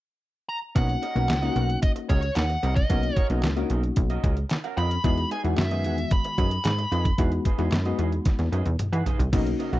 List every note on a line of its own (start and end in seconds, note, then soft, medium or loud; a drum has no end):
0.49 0.56 A#5 loud
0.75 0.97 B1 loud
0.75 1.04 A#3 medium
0.75 0.91 C#4 medium
0.75 1.04 C#4 medium
0.75 1.04 D#4 medium
0.75 0.89 F#4 medium
0.75 1.04 F#4 medium
0.75 0.88 A#4 medium
0.75 0.88 D#5 medium
0.75 1.79 F#5 medium
0.75 kick loud
0.75 closed hi-hat medium
0.89 muted clean electric guitar stroke soft
0.89 closed hi-hat soft
1.02 1.14 C#4 medium
1.02 1.14 F#4 medium
1.02 1.15 A#4 medium
1.02 1.15 D#5 medium
1.02 closed hi-hat medium
1.15 1.31 B1 medium
1.15 1.35 A#3 medium
1.15 1.35 C#4 medium
1.15 1.28 C#4 soft
1.15 1.35 D#4 medium
1.15 1.35 F#4 medium
1.15 1.28 F#4 soft
1.15 1.28 A#4 medium
1.15 1.28 F#5 medium
1.15 closed hi-hat soft
1.29 1.50 C#2 medium
1.29 muted clean electric guitar stroke soft
1.29 snare loud
1.29 clap medium
1.29 closed hi-hat medium
1.42 2.18 A#3 medium
1.42 2.18 C#4 medium
1.42 1.54 C#4 medium
1.42 2.18 D#4 medium
1.42 1.49 F4 medium
1.42 1.55 F#4 medium
1.42 1.55 A#4 medium
1.42 1.56 D#5 medium
1.42 closed hi-hat soft
1.49 2.22 F#4 medium
1.56 1.77 B1 medium
1.56 1.68 C#4 medium
1.56 1.68 F#4 medium
1.56 1.68 A#4 medium
1.56 1.68 F#5 medium
1.56 closed hi-hat medium
1.69 muted clean electric guitar stroke soft
1.69 closed hi-hat soft
1.82 1.90 D#5 medium
1.82 muted clean electric guitar stroke soft
1.82 kick loud
1.82 closed hi-hat medium
1.96 muted clean electric guitar stroke medium
1.96 closed hi-hat medium
2.09 2.30 C#2 loud
2.09 2.25 C#4 medium
2.09 2.22 F#4 medium
2.09 2.22 A#4 medium
2.09 2.37 C#5 medium
2.09 2.21 D#5 medium
2.09 kick medium
2.09 closed hi-hat medium
2.22 muted clean electric guitar stroke soft
2.22 closed hi-hat medium
2.35 2.57 D#2 medium
2.35 2.75 F#5 medium
2.35 muted clean electric guitar stroke soft
2.35 snare loud
2.35 clap medium
2.35 closed hi-hat loud
2.49 muted clean electric guitar stroke soft
2.49 closed hi-hat soft
2.63 2.84 C2 medium
2.63 2.78 C#4 medium
2.63 2.76 F#4 medium
2.63 2.76 A#4 medium
2.63 2.75 D#5 medium
2.63 closed hi-hat medium
2.76 3.26 D#5 medium
2.76 muted clean electric guitar stroke soft
2.76 kick medium
2.76 closed hi-hat medium
2.90 3.11 B1 loud
2.90 3.18 A#3 medium
2.90 3.05 C#4 medium
2.90 3.18 C#4 medium
2.90 3.18 D#4 medium
2.90 3.03 F#4 medium
2.90 3.19 F#4 medium
2.90 3.02 A#4 medium
2.90 3.03 F#5 medium
2.90 kick loud
2.90 closed hi-hat medium
3.03 muted clean electric guitar stroke soft
3.03 closed hi-hat soft
3.16 3.29 C#4 medium
3.16 3.29 F#4 medium
3.16 3.29 A#4 medium
3.16 3.29 D#5 medium
3.16 kick medium
3.16 closed hi-hat medium
3.30 3.45 B1 medium
3.30 3.49 A#3 medium
3.30 3.49 C#4 medium
3.30 3.42 C#4 medium
3.30 3.49 D#4 medium
3.30 3.42 F#4 medium
3.30 3.49 F#4 medium
3.30 3.42 A#4 medium
3.30 3.42 D#5 medium
3.30 closed hi-hat soft
3.43 3.64 C#2 medium
3.43 muted clean electric guitar stroke soft
3.43 snare loud
3.43 clap medium
3.43 closed hi-hat medium
3.56 4.32 A#3 medium
3.56 4.32 C#4 medium
3.56 3.69 C#4 medium
3.56 3.63 D4 medium
3.56 4.33 F#4 medium
3.56 3.69 F#4 medium
3.56 3.70 A#4 medium
3.56 3.70 D#5 medium
3.56 closed hi-hat soft
3.63 4.36 D#4 medium
3.70 3.91 B1 medium
3.70 3.82 C#4 medium
3.70 3.82 F#4 medium
3.70 3.82 A#4 medium
3.70 3.82 D#5 medium
3.70 closed hi-hat medium
3.83 muted clean electric guitar stroke soft
3.83 closed hi-hat soft
3.96 4.18 B1 medium
3.96 muted clean electric guitar stroke soft
3.96 kick loud
3.96 closed hi-hat medium
4.10 4.22 C#4 medium
4.10 4.23 F#4 medium
4.10 4.23 A#4 medium
4.10 4.23 D#5 medium
4.10 closed hi-hat medium
4.23 4.45 C#2 loud
4.23 4.36 C#4 medium
4.23 4.36 F#4 medium
4.23 4.36 A#4 medium
4.23 4.36 D#5 medium
4.23 kick medium
4.23 closed hi-hat medium
4.37 muted clean electric guitar stroke soft
4.37 closed hi-hat medium
4.50 muted clean electric guitar stroke soft
4.50 snare loud
4.50 clap medium
4.50 closed hi-hat loud
4.64 4.76 C#4 soft
4.64 4.76 F#4 medium
4.64 4.76 A#4 medium
4.64 4.76 F#5 medium
4.64 closed hi-hat soft
4.77 4.98 F2 medium
4.77 4.93 C#4 medium
4.77 4.90 F#4 medium
4.77 4.90 A#4 medium
4.77 4.90 D#5 loud
4.77 5.28 B5 loud
4.77 closed hi-hat medium
4.91 muted clean electric guitar stroke soft
4.91 closed hi-hat medium
5.04 5.25 E2 loud
5.04 5.32 G#3 medium
5.04 5.33 B3 medium
5.04 5.19 D#4 medium
5.04 5.33 D#4 medium
5.04 5.33 F#4 medium
5.04 5.17 G#4 medium
5.04 5.17 B4 medium
5.04 5.16 D#5 medium
5.04 kick loud
5.04 closed hi-hat medium
5.18 muted clean electric guitar stroke soft
5.18 closed hi-hat soft
5.31 5.43 D#4 medium
5.31 5.43 G#4 medium
5.31 5.43 B4 medium
5.31 5.43 D#5 medium
5.31 5.39 G#5 medium
5.31 closed hi-hat medium
5.44 5.55 E2 medium
5.44 5.63 G#3 medium
5.44 5.63 B3 medium
5.44 5.63 D#4 medium
5.44 5.57 D#4 medium
5.44 5.63 F#4 medium
5.44 5.57 G#4 medium
5.44 5.57 B4 medium
5.44 5.56 F#5 medium
5.44 closed hi-hat soft
5.58 5.86 F#2 loud
5.58 6.13 E5 medium
5.58 muted clean electric guitar stroke soft
5.58 snare loud
5.58 clap medium
5.58 closed hi-hat medium
5.71 6.47 D#3 medium
5.71 6.47 G#3 medium
5.71 6.47 B3 medium
5.71 5.83 D#4 medium
5.71 6.47 F#4 medium
5.71 5.84 G#4 medium
5.71 5.84 B4 medium
5.71 5.85 D#5 medium
5.71 closed hi-hat soft
5.84 6.06 E2 medium
5.84 5.97 D#4 medium
5.84 5.97 G#4 medium
5.84 5.97 B4 medium
5.84 5.97 F#5 medium
5.84 closed hi-hat medium
5.98 muted clean electric guitar stroke soft
5.98 closed hi-hat soft
6.11 8.76 B5 medium
6.11 muted clean electric guitar stroke soft
6.11 kick loud
6.11 closed hi-hat medium
6.24 muted clean electric guitar stroke medium
6.24 closed hi-hat medium
6.38 6.59 F#2 medium
6.38 6.53 D#4 medium
6.38 6.51 G#4 medium
6.38 6.51 B4 medium
6.38 6.51 D#5 medium
6.38 kick medium
6.38 closed hi-hat medium
6.51 muted clean electric guitar stroke soft
6.51 closed hi-hat medium
6.65 6.86 G#2 medium
6.65 muted clean electric guitar stroke soft
6.65 snare loud
6.65 clap medium
6.65 closed hi-hat loud
6.78 muted clean electric guitar stroke medium
6.78 closed hi-hat medium
6.92 7.13 F2 medium
6.92 7.07 D#4 medium
6.92 7.05 G#4 medium
6.92 7.04 B4 medium
6.92 7.04 D#5 medium
6.92 closed hi-hat medium
7.05 muted clean electric guitar stroke soft
7.05 kick medium
7.05 closed hi-hat medium
7.18 7.39 E2 loud
7.18 7.47 G#3 medium
7.18 7.47 B3 medium
7.18 7.47 D#4 medium
7.18 7.34 D#4 medium
7.18 7.47 F#4 loud
7.18 7.31 G#4 medium
7.18 7.31 B4 medium
7.18 7.32 F#5 medium
7.18 kick loud
7.18 closed hi-hat medium
7.32 muted clean electric guitar stroke medium
7.32 closed hi-hat soft
7.45 7.57 D#4 medium
7.45 7.57 G#4 medium
7.45 7.58 B4 medium
7.45 7.57 D#5 medium
7.45 kick medium
7.45 closed hi-hat medium
7.58 7.69 E2 loud
7.58 7.77 G#3 medium
7.58 7.78 B3 medium
7.58 7.78 D#4 medium
7.58 7.71 D#4 soft
7.58 7.78 F#4 medium
7.58 7.71 G#4 medium
7.58 7.71 B4 medium
7.58 7.71 D#5 medium
7.58 closed hi-hat soft
7.72 7.93 F#2 medium
7.72 muted clean electric guitar stroke soft
7.72 snare loud
7.72 clap medium
7.72 closed hi-hat medium
7.85 8.61 G#3 medium
7.85 8.61 B3 medium
7.85 8.61 D#4 medium
7.85 7.98 D#4 medium
7.85 8.61 F#4 medium
7.85 7.98 G#4 medium
7.85 7.98 B4 medium
7.85 7.99 D#5 medium
7.85 closed hi-hat soft
7.99 8.20 E2 medium
7.99 8.11 D#4 medium
7.99 8.11 G#4 medium
7.99 8.11 B4 medium
7.99 8.11 D#5 medium
7.99 closed hi-hat medium
8.12 muted clean electric guitar stroke soft
8.12 closed hi-hat soft
8.25 muted clean electric guitar stroke soft
8.25 kick loud
8.25 snare medium
8.25 closed hi-hat medium
8.39 8.49 E2 medium
8.39 muted clean electric guitar stroke soft
8.39 snare medium
8.39 closed hi-hat medium
8.52 8.63 F#2 medium
8.52 8.68 D#4 medium
8.52 8.65 G#4 medium
8.52 8.65 B4 medium
8.52 8.65 D#5 medium
8.52 closed hi-hat medium
8.66 8.76 E2 medium
8.66 muted clean electric guitar stroke soft
8.66 closed hi-hat medium
8.66 high tom medium
8.79 muted clean electric guitar stroke soft
8.79 closed hi-hat medium
8.79 mid tom medium
8.92 9.03 E3 medium
8.92 9.05 D#4 soft
8.92 9.05 G#4 medium
8.92 9.05 B4 medium
8.92 9.04 F#5 medium
8.92 closed hi-hat soft
9.06 9.21 D#4 medium
9.06 9.19 G#4 medium
9.06 9.18 B4 medium
9.06 9.18 D#5 medium
9.06 closed hi-hat medium
9.06 floor tom medium
9.19 9.30 C2 medium
9.19 muted clean electric guitar stroke soft
9.19 closed hi-hat medium
9.19 floor tom medium
9.32 9.54 B1 loud
9.32 9.80 C#3 medium
9.32 9.80 A#3 medium
9.32 9.48 C#4 medium
9.32 9.80 C#4 medium
9.32 9.80 D#4 medium
9.32 9.46 F#4 medium
9.32 9.80 F#4 loud
9.32 9.45 A#4 medium
9.32 9.45 D#5 medium
9.32 kick loud
9.32 closed hi-hat medium
9.32 crash medium
9.46 muted clean electric guitar stroke soft
9.46 closed hi-hat soft
9.59 9.71 C#4 medium
9.59 9.72 F#4 medium
9.59 9.72 A#4 medium
9.59 9.72 D#5 medium
9.59 closed hi-hat medium
9.73 9.80 B1 medium
9.73 9.80 C#4 soft
9.73 9.80 F#4 medium
9.73 9.80 A#4 medium
9.73 9.80 F#5 medium
9.73 closed hi-hat soft